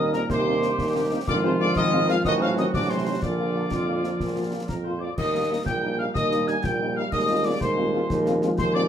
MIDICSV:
0, 0, Header, 1, 9, 480
1, 0, Start_track
1, 0, Key_signature, -3, "major"
1, 0, Tempo, 324921
1, 445, Time_signature, 6, 3, 24, 8
1, 13123, End_track
2, 0, Start_track
2, 0, Title_t, "Piccolo"
2, 0, Program_c, 0, 72
2, 0, Note_on_c, 0, 87, 99
2, 166, Note_off_c, 0, 87, 0
2, 205, Note_on_c, 0, 82, 81
2, 428, Note_off_c, 0, 82, 0
2, 447, Note_on_c, 0, 84, 101
2, 1587, Note_off_c, 0, 84, 0
2, 1881, Note_on_c, 0, 86, 127
2, 1970, Note_off_c, 0, 86, 0
2, 2130, Note_on_c, 0, 84, 84
2, 2219, Note_off_c, 0, 84, 0
2, 2369, Note_on_c, 0, 86, 111
2, 2590, Note_off_c, 0, 86, 0
2, 2609, Note_on_c, 0, 87, 101
2, 3053, Note_off_c, 0, 87, 0
2, 3093, Note_on_c, 0, 89, 113
2, 3312, Note_off_c, 0, 89, 0
2, 3327, Note_on_c, 0, 87, 124
2, 3416, Note_off_c, 0, 87, 0
2, 3571, Note_on_c, 0, 89, 103
2, 3660, Note_off_c, 0, 89, 0
2, 3815, Note_on_c, 0, 87, 102
2, 3903, Note_off_c, 0, 87, 0
2, 4045, Note_on_c, 0, 86, 102
2, 4281, Note_on_c, 0, 84, 87
2, 4303, Note_off_c, 0, 86, 0
2, 4762, Note_on_c, 0, 86, 88
2, 4784, Note_off_c, 0, 84, 0
2, 6470, Note_off_c, 0, 86, 0
2, 6920, Note_on_c, 0, 82, 73
2, 7009, Note_off_c, 0, 82, 0
2, 7158, Note_on_c, 0, 84, 71
2, 7247, Note_off_c, 0, 84, 0
2, 7392, Note_on_c, 0, 86, 66
2, 7621, Note_off_c, 0, 86, 0
2, 7640, Note_on_c, 0, 87, 91
2, 8089, Note_off_c, 0, 87, 0
2, 8120, Note_on_c, 0, 87, 90
2, 8346, Note_off_c, 0, 87, 0
2, 8356, Note_on_c, 0, 91, 93
2, 8807, Note_off_c, 0, 91, 0
2, 8840, Note_on_c, 0, 89, 84
2, 8929, Note_off_c, 0, 89, 0
2, 9085, Note_on_c, 0, 87, 101
2, 9572, Note_on_c, 0, 92, 93
2, 9595, Note_off_c, 0, 87, 0
2, 9803, Note_off_c, 0, 92, 0
2, 9811, Note_on_c, 0, 91, 86
2, 10296, Note_on_c, 0, 89, 97
2, 10318, Note_off_c, 0, 91, 0
2, 10536, Note_on_c, 0, 87, 107
2, 10558, Note_off_c, 0, 89, 0
2, 11002, Note_on_c, 0, 86, 102
2, 11024, Note_off_c, 0, 87, 0
2, 11244, Note_off_c, 0, 86, 0
2, 11255, Note_on_c, 0, 84, 97
2, 12350, Note_off_c, 0, 84, 0
2, 12680, Note_on_c, 0, 84, 119
2, 12769, Note_off_c, 0, 84, 0
2, 12924, Note_on_c, 0, 86, 116
2, 13012, Note_off_c, 0, 86, 0
2, 13123, End_track
3, 0, Start_track
3, 0, Title_t, "Trumpet section"
3, 0, Program_c, 1, 61
3, 0, Note_on_c, 1, 75, 100
3, 164, Note_off_c, 1, 75, 0
3, 195, Note_on_c, 1, 70, 97
3, 306, Note_off_c, 1, 70, 0
3, 437, Note_on_c, 1, 72, 103
3, 1582, Note_off_c, 1, 72, 0
3, 1879, Note_on_c, 1, 74, 124
3, 1988, Note_off_c, 1, 74, 0
3, 2121, Note_on_c, 1, 72, 97
3, 2230, Note_off_c, 1, 72, 0
3, 2355, Note_on_c, 1, 74, 114
3, 2583, Note_off_c, 1, 74, 0
3, 2600, Note_on_c, 1, 75, 121
3, 3049, Note_off_c, 1, 75, 0
3, 3087, Note_on_c, 1, 77, 118
3, 3194, Note_off_c, 1, 77, 0
3, 3329, Note_on_c, 1, 75, 127
3, 3436, Note_off_c, 1, 75, 0
3, 3561, Note_on_c, 1, 77, 111
3, 3670, Note_off_c, 1, 77, 0
3, 3810, Note_on_c, 1, 75, 103
3, 3917, Note_off_c, 1, 75, 0
3, 4044, Note_on_c, 1, 74, 101
3, 4268, Note_off_c, 1, 74, 0
3, 4289, Note_on_c, 1, 72, 98
3, 4762, Note_on_c, 1, 74, 91
3, 4767, Note_off_c, 1, 72, 0
3, 6865, Note_off_c, 1, 74, 0
3, 6924, Note_on_c, 1, 70, 75
3, 7148, Note_off_c, 1, 70, 0
3, 7167, Note_on_c, 1, 72, 77
3, 7406, Note_off_c, 1, 72, 0
3, 7408, Note_on_c, 1, 74, 79
3, 7516, Note_off_c, 1, 74, 0
3, 7637, Note_on_c, 1, 75, 103
3, 8087, Note_off_c, 1, 75, 0
3, 8124, Note_on_c, 1, 75, 90
3, 8233, Note_off_c, 1, 75, 0
3, 8358, Note_on_c, 1, 79, 90
3, 8808, Note_off_c, 1, 79, 0
3, 8842, Note_on_c, 1, 77, 97
3, 8951, Note_off_c, 1, 77, 0
3, 9076, Note_on_c, 1, 75, 106
3, 9527, Note_off_c, 1, 75, 0
3, 9560, Note_on_c, 1, 80, 101
3, 9786, Note_off_c, 1, 80, 0
3, 9805, Note_on_c, 1, 79, 90
3, 10281, Note_on_c, 1, 77, 116
3, 10286, Note_off_c, 1, 79, 0
3, 10390, Note_off_c, 1, 77, 0
3, 10518, Note_on_c, 1, 75, 110
3, 10968, Note_off_c, 1, 75, 0
3, 10996, Note_on_c, 1, 74, 103
3, 11238, Note_on_c, 1, 72, 97
3, 11242, Note_off_c, 1, 74, 0
3, 12383, Note_off_c, 1, 72, 0
3, 12674, Note_on_c, 1, 72, 120
3, 12903, Note_off_c, 1, 72, 0
3, 12907, Note_on_c, 1, 74, 127
3, 13020, Note_off_c, 1, 74, 0
3, 13123, End_track
4, 0, Start_track
4, 0, Title_t, "Woodwind section"
4, 0, Program_c, 2, 71
4, 0, Note_on_c, 2, 70, 82
4, 436, Note_on_c, 2, 67, 102
4, 444, Note_off_c, 2, 70, 0
4, 1880, Note_off_c, 2, 67, 0
4, 1881, Note_on_c, 2, 65, 107
4, 3264, Note_off_c, 2, 65, 0
4, 3330, Note_on_c, 2, 66, 102
4, 3997, Note_off_c, 2, 66, 0
4, 4048, Note_on_c, 2, 66, 79
4, 4716, Note_off_c, 2, 66, 0
4, 4761, Note_on_c, 2, 65, 81
4, 6922, Note_on_c, 2, 70, 72
4, 6923, Note_off_c, 2, 65, 0
4, 7030, Note_off_c, 2, 70, 0
4, 7160, Note_on_c, 2, 72, 68
4, 7386, Note_off_c, 2, 72, 0
4, 7394, Note_on_c, 2, 74, 79
4, 7634, Note_on_c, 2, 75, 92
4, 7640, Note_off_c, 2, 74, 0
4, 8106, Note_off_c, 2, 75, 0
4, 8123, Note_on_c, 2, 75, 83
4, 8232, Note_off_c, 2, 75, 0
4, 8357, Note_on_c, 2, 79, 92
4, 8808, Note_off_c, 2, 79, 0
4, 8839, Note_on_c, 2, 77, 96
4, 9078, Note_on_c, 2, 75, 99
4, 9082, Note_off_c, 2, 77, 0
4, 9528, Note_off_c, 2, 75, 0
4, 9566, Note_on_c, 2, 80, 82
4, 9674, Note_off_c, 2, 80, 0
4, 9801, Note_on_c, 2, 79, 80
4, 10250, Note_off_c, 2, 79, 0
4, 10284, Note_on_c, 2, 77, 96
4, 10508, Note_off_c, 2, 77, 0
4, 10515, Note_on_c, 2, 75, 106
4, 10967, Note_off_c, 2, 75, 0
4, 11001, Note_on_c, 2, 74, 88
4, 11227, Note_off_c, 2, 74, 0
4, 11237, Note_on_c, 2, 72, 90
4, 12383, Note_off_c, 2, 72, 0
4, 12682, Note_on_c, 2, 72, 106
4, 12907, Note_off_c, 2, 72, 0
4, 12924, Note_on_c, 2, 74, 108
4, 13123, Note_off_c, 2, 74, 0
4, 13123, End_track
5, 0, Start_track
5, 0, Title_t, "French horn section"
5, 0, Program_c, 3, 60
5, 202, Note_on_c, 3, 60, 74
5, 203, Note_on_c, 3, 58, 72
5, 203, Note_on_c, 3, 63, 74
5, 289, Note_off_c, 3, 60, 0
5, 290, Note_off_c, 3, 58, 0
5, 290, Note_off_c, 3, 63, 0
5, 680, Note_on_c, 3, 60, 71
5, 681, Note_on_c, 3, 58, 81
5, 682, Note_on_c, 3, 63, 77
5, 767, Note_off_c, 3, 60, 0
5, 768, Note_off_c, 3, 58, 0
5, 769, Note_off_c, 3, 63, 0
5, 915, Note_on_c, 3, 63, 76
5, 916, Note_on_c, 3, 58, 76
5, 918, Note_on_c, 3, 60, 77
5, 1004, Note_off_c, 3, 63, 0
5, 1005, Note_off_c, 3, 58, 0
5, 1006, Note_off_c, 3, 60, 0
5, 1403, Note_on_c, 3, 63, 80
5, 1404, Note_on_c, 3, 58, 80
5, 1405, Note_on_c, 3, 60, 75
5, 1490, Note_off_c, 3, 63, 0
5, 1491, Note_off_c, 3, 58, 0
5, 1491, Note_off_c, 3, 60, 0
5, 1643, Note_on_c, 3, 60, 80
5, 1645, Note_on_c, 3, 58, 81
5, 1645, Note_on_c, 3, 63, 84
5, 1730, Note_off_c, 3, 60, 0
5, 1731, Note_off_c, 3, 58, 0
5, 1731, Note_off_c, 3, 63, 0
5, 2122, Note_on_c, 3, 56, 87
5, 2127, Note_on_c, 3, 60, 88
5, 2127, Note_on_c, 3, 65, 76
5, 2209, Note_off_c, 3, 56, 0
5, 2213, Note_off_c, 3, 60, 0
5, 2213, Note_off_c, 3, 65, 0
5, 2360, Note_on_c, 3, 60, 83
5, 2362, Note_on_c, 3, 56, 80
5, 2363, Note_on_c, 3, 65, 80
5, 2448, Note_off_c, 3, 60, 0
5, 2449, Note_off_c, 3, 56, 0
5, 2450, Note_off_c, 3, 65, 0
5, 2839, Note_on_c, 3, 56, 81
5, 2841, Note_on_c, 3, 60, 88
5, 2842, Note_on_c, 3, 65, 83
5, 2927, Note_off_c, 3, 56, 0
5, 2928, Note_off_c, 3, 60, 0
5, 2929, Note_off_c, 3, 65, 0
5, 3082, Note_on_c, 3, 56, 83
5, 3082, Note_on_c, 3, 60, 84
5, 3082, Note_on_c, 3, 65, 89
5, 3169, Note_off_c, 3, 56, 0
5, 3169, Note_off_c, 3, 60, 0
5, 3169, Note_off_c, 3, 65, 0
5, 3563, Note_on_c, 3, 60, 76
5, 3565, Note_on_c, 3, 54, 81
5, 3565, Note_on_c, 3, 63, 80
5, 3650, Note_off_c, 3, 60, 0
5, 3651, Note_off_c, 3, 54, 0
5, 3651, Note_off_c, 3, 63, 0
5, 3799, Note_on_c, 3, 60, 79
5, 3803, Note_on_c, 3, 63, 78
5, 3804, Note_on_c, 3, 54, 76
5, 3886, Note_off_c, 3, 60, 0
5, 3890, Note_off_c, 3, 54, 0
5, 3890, Note_off_c, 3, 63, 0
5, 4278, Note_on_c, 3, 54, 66
5, 4281, Note_on_c, 3, 60, 64
5, 4282, Note_on_c, 3, 63, 70
5, 4366, Note_off_c, 3, 54, 0
5, 4368, Note_off_c, 3, 60, 0
5, 4369, Note_off_c, 3, 63, 0
5, 4526, Note_on_c, 3, 63, 64
5, 4528, Note_on_c, 3, 54, 67
5, 4528, Note_on_c, 3, 60, 65
5, 4612, Note_off_c, 3, 63, 0
5, 4614, Note_off_c, 3, 54, 0
5, 4614, Note_off_c, 3, 60, 0
5, 5008, Note_on_c, 3, 58, 62
5, 5009, Note_on_c, 3, 65, 59
5, 5010, Note_on_c, 3, 53, 62
5, 5094, Note_off_c, 3, 58, 0
5, 5094, Note_off_c, 3, 65, 0
5, 5096, Note_off_c, 3, 53, 0
5, 5254, Note_on_c, 3, 65, 65
5, 5255, Note_on_c, 3, 58, 56
5, 5256, Note_on_c, 3, 53, 60
5, 5339, Note_off_c, 3, 58, 0
5, 5339, Note_off_c, 3, 65, 0
5, 5340, Note_off_c, 3, 53, 0
5, 5728, Note_on_c, 3, 58, 57
5, 5730, Note_on_c, 3, 65, 57
5, 5733, Note_on_c, 3, 53, 59
5, 5814, Note_off_c, 3, 58, 0
5, 5815, Note_off_c, 3, 65, 0
5, 5817, Note_off_c, 3, 53, 0
5, 5965, Note_on_c, 3, 58, 58
5, 5966, Note_on_c, 3, 65, 57
5, 5970, Note_on_c, 3, 53, 56
5, 6051, Note_off_c, 3, 58, 0
5, 6052, Note_off_c, 3, 65, 0
5, 6055, Note_off_c, 3, 53, 0
5, 6447, Note_on_c, 3, 53, 57
5, 6447, Note_on_c, 3, 65, 57
5, 6451, Note_on_c, 3, 58, 55
5, 6533, Note_off_c, 3, 53, 0
5, 6533, Note_off_c, 3, 65, 0
5, 6536, Note_off_c, 3, 58, 0
5, 6684, Note_on_c, 3, 65, 58
5, 6686, Note_on_c, 3, 58, 57
5, 6687, Note_on_c, 3, 53, 53
5, 6771, Note_off_c, 3, 65, 0
5, 6772, Note_off_c, 3, 58, 0
5, 6773, Note_off_c, 3, 53, 0
5, 7163, Note_on_c, 3, 53, 50
5, 7163, Note_on_c, 3, 65, 53
5, 7164, Note_on_c, 3, 58, 53
5, 7250, Note_off_c, 3, 53, 0
5, 7250, Note_off_c, 3, 65, 0
5, 7251, Note_off_c, 3, 58, 0
5, 7406, Note_on_c, 3, 58, 54
5, 7406, Note_on_c, 3, 65, 52
5, 7408, Note_on_c, 3, 53, 56
5, 7493, Note_off_c, 3, 58, 0
5, 7493, Note_off_c, 3, 65, 0
5, 7494, Note_off_c, 3, 53, 0
5, 7891, Note_on_c, 3, 55, 64
5, 7894, Note_on_c, 3, 58, 67
5, 7894, Note_on_c, 3, 63, 66
5, 7976, Note_off_c, 3, 55, 0
5, 7978, Note_off_c, 3, 58, 0
5, 7978, Note_off_c, 3, 63, 0
5, 8132, Note_on_c, 3, 55, 67
5, 8132, Note_on_c, 3, 58, 68
5, 8135, Note_on_c, 3, 63, 69
5, 8217, Note_off_c, 3, 55, 0
5, 8217, Note_off_c, 3, 58, 0
5, 8219, Note_off_c, 3, 63, 0
5, 8611, Note_on_c, 3, 55, 69
5, 8611, Note_on_c, 3, 63, 68
5, 8612, Note_on_c, 3, 58, 65
5, 8696, Note_off_c, 3, 63, 0
5, 8697, Note_off_c, 3, 55, 0
5, 8697, Note_off_c, 3, 58, 0
5, 8852, Note_on_c, 3, 58, 66
5, 8854, Note_on_c, 3, 55, 71
5, 8854, Note_on_c, 3, 63, 69
5, 8937, Note_off_c, 3, 58, 0
5, 8938, Note_off_c, 3, 63, 0
5, 8939, Note_off_c, 3, 55, 0
5, 9334, Note_on_c, 3, 63, 71
5, 9335, Note_on_c, 3, 58, 70
5, 9336, Note_on_c, 3, 55, 73
5, 9419, Note_off_c, 3, 58, 0
5, 9419, Note_off_c, 3, 63, 0
5, 9420, Note_off_c, 3, 55, 0
5, 9575, Note_on_c, 3, 63, 70
5, 9576, Note_on_c, 3, 55, 73
5, 9578, Note_on_c, 3, 58, 71
5, 9659, Note_off_c, 3, 63, 0
5, 9660, Note_off_c, 3, 55, 0
5, 9662, Note_off_c, 3, 58, 0
5, 10049, Note_on_c, 3, 55, 69
5, 10050, Note_on_c, 3, 63, 71
5, 10051, Note_on_c, 3, 58, 67
5, 10135, Note_off_c, 3, 55, 0
5, 10135, Note_off_c, 3, 63, 0
5, 10136, Note_off_c, 3, 58, 0
5, 10289, Note_on_c, 3, 55, 76
5, 10290, Note_on_c, 3, 63, 73
5, 10291, Note_on_c, 3, 58, 72
5, 10375, Note_off_c, 3, 55, 0
5, 10375, Note_off_c, 3, 63, 0
5, 10377, Note_off_c, 3, 58, 0
5, 10765, Note_on_c, 3, 56, 77
5, 10766, Note_on_c, 3, 60, 74
5, 10767, Note_on_c, 3, 65, 73
5, 10852, Note_off_c, 3, 56, 0
5, 10853, Note_off_c, 3, 60, 0
5, 10853, Note_off_c, 3, 65, 0
5, 11007, Note_on_c, 3, 60, 78
5, 11011, Note_on_c, 3, 56, 77
5, 11011, Note_on_c, 3, 65, 77
5, 11094, Note_off_c, 3, 60, 0
5, 11096, Note_off_c, 3, 56, 0
5, 11097, Note_off_c, 3, 65, 0
5, 11480, Note_on_c, 3, 60, 74
5, 11483, Note_on_c, 3, 56, 79
5, 11484, Note_on_c, 3, 65, 78
5, 11568, Note_off_c, 3, 60, 0
5, 11570, Note_off_c, 3, 56, 0
5, 11571, Note_off_c, 3, 65, 0
5, 11728, Note_on_c, 3, 56, 81
5, 11728, Note_on_c, 3, 60, 85
5, 11731, Note_on_c, 3, 65, 85
5, 11814, Note_off_c, 3, 56, 0
5, 11814, Note_off_c, 3, 60, 0
5, 11816, Note_off_c, 3, 65, 0
5, 12211, Note_on_c, 3, 65, 87
5, 12212, Note_on_c, 3, 60, 86
5, 12213, Note_on_c, 3, 56, 86
5, 12297, Note_off_c, 3, 60, 0
5, 12297, Note_off_c, 3, 65, 0
5, 12298, Note_off_c, 3, 56, 0
5, 12445, Note_on_c, 3, 60, 91
5, 12447, Note_on_c, 3, 65, 85
5, 12448, Note_on_c, 3, 56, 88
5, 12531, Note_off_c, 3, 60, 0
5, 12534, Note_off_c, 3, 56, 0
5, 12534, Note_off_c, 3, 65, 0
5, 12928, Note_on_c, 3, 56, 87
5, 12932, Note_on_c, 3, 60, 84
5, 12933, Note_on_c, 3, 65, 84
5, 13014, Note_off_c, 3, 56, 0
5, 13017, Note_off_c, 3, 60, 0
5, 13018, Note_off_c, 3, 65, 0
5, 13123, End_track
6, 0, Start_track
6, 0, Title_t, "Trombone section"
6, 0, Program_c, 4, 61
6, 0, Note_on_c, 4, 55, 80
6, 0, Note_on_c, 4, 58, 80
6, 1821, Note_off_c, 4, 55, 0
6, 1826, Note_off_c, 4, 58, 0
6, 1877, Note_on_c, 4, 60, 102
6, 1881, Note_on_c, 4, 53, 94
6, 3264, Note_off_c, 4, 53, 0
6, 3338, Note_on_c, 4, 54, 85
6, 4761, Note_off_c, 4, 60, 0
6, 4772, Note_off_c, 4, 54, 0
6, 4778, Note_on_c, 4, 58, 73
6, 4781, Note_on_c, 4, 53, 73
6, 7353, Note_off_c, 4, 58, 0
6, 7413, Note_off_c, 4, 53, 0
6, 7651, Note_on_c, 4, 58, 83
6, 7653, Note_on_c, 4, 55, 80
6, 10470, Note_off_c, 4, 58, 0
6, 10530, Note_on_c, 4, 56, 94
6, 11911, Note_off_c, 4, 55, 0
6, 11957, Note_on_c, 4, 53, 91
6, 13123, Note_off_c, 4, 53, 0
6, 13123, Note_off_c, 4, 56, 0
6, 13123, End_track
7, 0, Start_track
7, 0, Title_t, "Euphonium"
7, 0, Program_c, 5, 58
7, 0, Note_on_c, 5, 51, 98
7, 212, Note_on_c, 5, 46, 85
7, 234, Note_off_c, 5, 51, 0
7, 425, Note_off_c, 5, 46, 0
7, 433, Note_on_c, 5, 48, 97
7, 1580, Note_off_c, 5, 48, 0
7, 1888, Note_on_c, 5, 50, 123
7, 1996, Note_off_c, 5, 50, 0
7, 2128, Note_on_c, 5, 48, 86
7, 2364, Note_on_c, 5, 50, 107
7, 2387, Note_off_c, 5, 48, 0
7, 2596, Note_off_c, 5, 50, 0
7, 2604, Note_on_c, 5, 51, 117
7, 3083, Note_on_c, 5, 53, 107
7, 3105, Note_off_c, 5, 51, 0
7, 3319, Note_off_c, 5, 53, 0
7, 3328, Note_on_c, 5, 51, 114
7, 3565, Note_on_c, 5, 53, 111
7, 3587, Note_off_c, 5, 51, 0
7, 3802, Note_on_c, 5, 51, 98
7, 3824, Note_off_c, 5, 53, 0
7, 4036, Note_off_c, 5, 51, 0
7, 4045, Note_on_c, 5, 50, 99
7, 4268, Note_off_c, 5, 50, 0
7, 4287, Note_on_c, 5, 48, 89
7, 4733, Note_off_c, 5, 48, 0
7, 4769, Note_on_c, 5, 50, 92
7, 6868, Note_off_c, 5, 50, 0
7, 13123, End_track
8, 0, Start_track
8, 0, Title_t, "Tuba"
8, 0, Program_c, 6, 58
8, 0, Note_on_c, 6, 39, 87
8, 324, Note_off_c, 6, 39, 0
8, 437, Note_on_c, 6, 39, 96
8, 1040, Note_off_c, 6, 39, 0
8, 1157, Note_on_c, 6, 39, 97
8, 1701, Note_off_c, 6, 39, 0
8, 1882, Note_on_c, 6, 32, 105
8, 2483, Note_off_c, 6, 32, 0
8, 2601, Note_on_c, 6, 32, 102
8, 3203, Note_off_c, 6, 32, 0
8, 3321, Note_on_c, 6, 33, 101
8, 3923, Note_off_c, 6, 33, 0
8, 4037, Note_on_c, 6, 33, 84
8, 4641, Note_off_c, 6, 33, 0
8, 4766, Note_on_c, 6, 34, 84
8, 5365, Note_off_c, 6, 34, 0
8, 5476, Note_on_c, 6, 41, 78
8, 6080, Note_off_c, 6, 41, 0
8, 6201, Note_on_c, 6, 34, 69
8, 6803, Note_off_c, 6, 34, 0
8, 6929, Note_on_c, 6, 41, 65
8, 7527, Note_off_c, 6, 41, 0
8, 7640, Note_on_c, 6, 39, 88
8, 8243, Note_off_c, 6, 39, 0
8, 8356, Note_on_c, 6, 34, 87
8, 8961, Note_off_c, 6, 34, 0
8, 9085, Note_on_c, 6, 39, 88
8, 9685, Note_off_c, 6, 39, 0
8, 9800, Note_on_c, 6, 34, 86
8, 10345, Note_off_c, 6, 34, 0
8, 10525, Note_on_c, 6, 39, 94
8, 11126, Note_off_c, 6, 39, 0
8, 11251, Note_on_c, 6, 39, 100
8, 11849, Note_off_c, 6, 39, 0
8, 11959, Note_on_c, 6, 39, 113
8, 12563, Note_off_c, 6, 39, 0
8, 12686, Note_on_c, 6, 39, 106
8, 13123, Note_off_c, 6, 39, 0
8, 13123, End_track
9, 0, Start_track
9, 0, Title_t, "Drums"
9, 197, Note_on_c, 9, 38, 56
9, 345, Note_off_c, 9, 38, 0
9, 440, Note_on_c, 9, 35, 83
9, 440, Note_on_c, 9, 38, 81
9, 588, Note_off_c, 9, 35, 0
9, 588, Note_off_c, 9, 38, 0
9, 921, Note_on_c, 9, 38, 58
9, 1069, Note_off_c, 9, 38, 0
9, 1162, Note_on_c, 9, 35, 76
9, 1162, Note_on_c, 9, 38, 70
9, 1309, Note_off_c, 9, 35, 0
9, 1309, Note_off_c, 9, 38, 0
9, 1885, Note_on_c, 9, 35, 90
9, 1885, Note_on_c, 9, 38, 78
9, 1885, Note_on_c, 9, 49, 33
9, 2032, Note_off_c, 9, 35, 0
9, 2032, Note_off_c, 9, 38, 0
9, 2032, Note_off_c, 9, 49, 0
9, 2600, Note_on_c, 9, 35, 89
9, 2600, Note_on_c, 9, 38, 76
9, 2748, Note_off_c, 9, 35, 0
9, 2748, Note_off_c, 9, 38, 0
9, 3085, Note_on_c, 9, 38, 55
9, 3233, Note_off_c, 9, 38, 0
9, 3320, Note_on_c, 9, 35, 90
9, 3320, Note_on_c, 9, 38, 83
9, 3468, Note_off_c, 9, 35, 0
9, 3468, Note_off_c, 9, 38, 0
9, 3802, Note_on_c, 9, 38, 53
9, 3950, Note_off_c, 9, 38, 0
9, 4047, Note_on_c, 9, 35, 84
9, 4047, Note_on_c, 9, 38, 67
9, 4195, Note_off_c, 9, 35, 0
9, 4195, Note_off_c, 9, 38, 0
9, 4766, Note_on_c, 9, 35, 83
9, 4766, Note_on_c, 9, 38, 74
9, 4913, Note_off_c, 9, 35, 0
9, 4913, Note_off_c, 9, 38, 0
9, 5485, Note_on_c, 9, 35, 81
9, 5485, Note_on_c, 9, 38, 74
9, 5632, Note_off_c, 9, 35, 0
9, 5632, Note_off_c, 9, 38, 0
9, 5967, Note_on_c, 9, 38, 53
9, 6115, Note_off_c, 9, 38, 0
9, 6208, Note_on_c, 9, 35, 77
9, 6208, Note_on_c, 9, 38, 59
9, 6355, Note_off_c, 9, 35, 0
9, 6355, Note_off_c, 9, 38, 0
9, 6927, Note_on_c, 9, 35, 76
9, 6927, Note_on_c, 9, 38, 72
9, 7075, Note_off_c, 9, 35, 0
9, 7075, Note_off_c, 9, 38, 0
9, 7650, Note_on_c, 9, 35, 81
9, 7650, Note_on_c, 9, 38, 64
9, 7650, Note_on_c, 9, 49, 58
9, 7797, Note_off_c, 9, 35, 0
9, 7797, Note_off_c, 9, 38, 0
9, 7797, Note_off_c, 9, 49, 0
9, 8364, Note_on_c, 9, 35, 83
9, 8364, Note_on_c, 9, 38, 75
9, 8512, Note_off_c, 9, 35, 0
9, 8512, Note_off_c, 9, 38, 0
9, 9090, Note_on_c, 9, 35, 83
9, 9090, Note_on_c, 9, 38, 78
9, 9237, Note_off_c, 9, 35, 0
9, 9237, Note_off_c, 9, 38, 0
9, 9328, Note_on_c, 9, 38, 59
9, 9476, Note_off_c, 9, 38, 0
9, 9570, Note_on_c, 9, 38, 55
9, 9717, Note_off_c, 9, 38, 0
9, 9806, Note_on_c, 9, 35, 81
9, 9806, Note_on_c, 9, 38, 80
9, 9954, Note_off_c, 9, 35, 0
9, 9954, Note_off_c, 9, 38, 0
9, 10523, Note_on_c, 9, 35, 88
9, 10523, Note_on_c, 9, 38, 71
9, 10523, Note_on_c, 9, 49, 34
9, 10671, Note_off_c, 9, 35, 0
9, 10671, Note_off_c, 9, 38, 0
9, 10671, Note_off_c, 9, 49, 0
9, 11243, Note_on_c, 9, 35, 84
9, 11243, Note_on_c, 9, 38, 88
9, 11391, Note_off_c, 9, 35, 0
9, 11391, Note_off_c, 9, 38, 0
9, 11968, Note_on_c, 9, 35, 89
9, 11968, Note_on_c, 9, 38, 82
9, 12116, Note_off_c, 9, 35, 0
9, 12116, Note_off_c, 9, 38, 0
9, 12204, Note_on_c, 9, 38, 64
9, 12352, Note_off_c, 9, 38, 0
9, 12440, Note_on_c, 9, 38, 58
9, 12587, Note_off_c, 9, 38, 0
9, 12681, Note_on_c, 9, 35, 91
9, 12681, Note_on_c, 9, 38, 85
9, 12829, Note_off_c, 9, 35, 0
9, 12829, Note_off_c, 9, 38, 0
9, 13123, End_track
0, 0, End_of_file